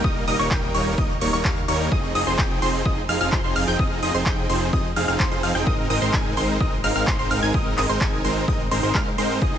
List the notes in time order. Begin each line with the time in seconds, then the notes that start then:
0.04 D#1 G3 A#3 D#4 A#4 D#5 D#6, kick
0.28 D#1 G3 A#3 D#4 A#4 D#5 D#6, open hi-hat
0.39 D#1 G3 A#3 D#4 A#4 C#5 C#6
0.51 D#1 G3 A#3 D#4 A#4 G5 G6, kick, clap
0.74 D#1 G3 A#3 D#4 A#4 C#5 C#6, open hi-hat
0.98 D#1 A#3 D#6, kick
1.21 D#1 G3 A#3 D#4 A#4 C#5 C#6, open hi-hat
1.33 D#1 G3 A#3 D#4 A#4 C#5 C#6
1.45 D#2 G3 F6, kick, clap
1.68 D#2 G3 A#3 D#4 A#4 C#5 C#6, open hi-hat
1.92 F1 F3 C4 D#4 G#4 D#5 D#6, kick
2.15 F1 F3 C4 D#4 G#4 D#5 D#6, open hi-hat
2.27 F1 F3 C4 D#4 G#4 C5 C6
2.39 F1 F3 C4 D#4 G#4 G6, kick, clap
2.62 F1 F3 C4 D#4 G#4 C5 C6, open hi-hat
2.86 F1 F3 C4 D#4 G#4 D#5 D#6, kick
3.09 F1 F3 C4 D#4 G#4 F5 F6, open hi-hat
3.21 F1 F3 C4 D#4 G#4 F5 F6
3.32 F1 F3 C6, kick, clap
3.44 F1 F3 C4 D#4 G#4 C5 C6
3.56 F1 F3 C4 D#4 G#4 F5 F6, open hi-hat
3.68 F1 F3 C4 D#4 G#4 G5 G6
3.79 F1 C4 D#4 D#6, kick
4.03 F1 F3 C4 D#4 G#4 D#5 D#6, open hi-hat
4.14 F1 F3 C4 D#4 G#4 C5 C6
4.26 F1 F3 C4 G6, kick, clap
4.49 F1 F3 C4 D#4 G#4 C5 C6, open hi-hat
4.73 F1 F3 C4 D#4 D#6, kick
4.96 F1 F3 C4 D#4 G#4 F5 F6, open hi-hat
5.08 F1 F3 C4 D#4 G#4 F5 F6
5.20 F1 F3 C4 D#4 G#4 C5 C6, kick, clap
5.32 F2 F3 C4 D#4 G#4 C5 C6
5.43 F2 F3 C4 D#4 G#4 F5 F6, open hi-hat
5.55 F1 F3 C4 D#4 G#4 G5 G6
5.67 G#1 G#3 C4 D#4 A#4 D#5 D#6, kick
5.90 G#1 G#3 C4 D#4 A#4 D#5 D#6, open hi-hat
6.02 G#1 G#3 C4 D#4 A#4 C5 C6
6.13 G#1 G#6, kick, clap
6.37 G#1 G#3 C4 D#4 A#4 C5 C6, open hi-hat
6.60 G#1 G#3 C4 D#4 A#4 D#5 D#6, kick
6.84 G#1 G#3 C4 D#4 A#4 F5 F6, open hi-hat
6.96 G#1 G#3 C4 D#4 A#4 F5 F6
7.07 G#1 G#3 C4 D#4 A#4 C5 C6, kick, clap
7.19 G#1 G#3 C4 D#4 A#4 C5 C6
7.31 G#1 G#3 C4 D#4 A#4 F5 F6, open hi-hat
7.42 G#1 G#3 C4 D#4 A#4 G#5 G#6
7.54 G#1 G#3 C4 D#4 A#4 D#5 D#6, kick
7.78 G#1 G#3 C4 D#4 A#4 D#5 D#6, clap, open hi-hat
7.89 G#1 G#3 C4 D#4 A#4 C5 C6
8.01 G#1 G#3 C4 D#4 A#4 G#5 G#6, kick, clap
8.24 G#1 G#3 C4 D#4 A#4 C5 C6, open hi-hat
8.48 G#1 G#3 C4 D#4 A#4 D#5 D#6, kick
8.71 G#1 G#3 C4 D#4 A#4 C5 C6, open hi-hat
8.83 G#1 G#3 C4 D#4 A#4 C5 C6
8.95 G#2 C4 A#4 F6, kick, clap
9.18 G#2 G#3 C4 D#4 A#4 C5 C6, open hi-hat
9.42 F1 C4 D#4 G#4 D#6, kick